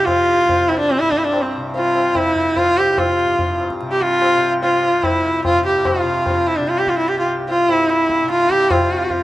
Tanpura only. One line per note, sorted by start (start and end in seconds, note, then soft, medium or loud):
0.00 0.44 C2 medium
0.00 1.00 G2 soft
0.00 1.58 C3 medium
0.45 2.68 C2 medium
1.00 3.25 G2 medium
1.58 2.13 C3 medium
2.13 3.82 C3 medium
2.69 4.92 C2 medium
3.25 5.49 G2 medium
3.82 4.37 C3 medium
4.37 6.03 C3 medium
4.93 7.12 C2 medium
5.49 7.68 G2 medium
6.03 6.59 C3 medium
6.59 8.23 C3 medium
7.13 9.23 C2 medium
7.68 9.23 G2 medium
8.23 8.77 C3 medium
8.77 9.23 C3 medium